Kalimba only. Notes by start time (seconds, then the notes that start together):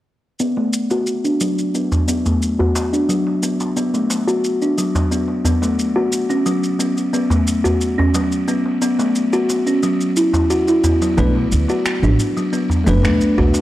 0.40 B3
0.57 A3
0.91 F#4
1.24 D4
1.41 F#3
1.75 B3
2.08 B3
2.26 A3
2.59 F#4
2.93 D4
3.09 F#3
3.43 B3
3.77 B3
3.94 A3
4.28 F#4
4.62 D4
4.78 F#3
5.11 B3
5.45 B3
5.62 A3
5.96 F#4
6.30 C#4
6.46 F#3
6.79 B3
7.13 B3
7.30 A3
7.64 F#4
7.98 C#4
8.14 F#3
8.48 B3
8.82 B3
8.99 A3
9.33 F#4
9.67 C#4
9.83 F#3
10.17 E4
10.50 F#4
10.68 E4
10.84 B3
11.02 F#3
11.18 B3
11.36 A3
11.70 F#4
12.03 D4
12.37 F#3
12.53 B3
12.87 B3
13.04 A3
13.38 F#4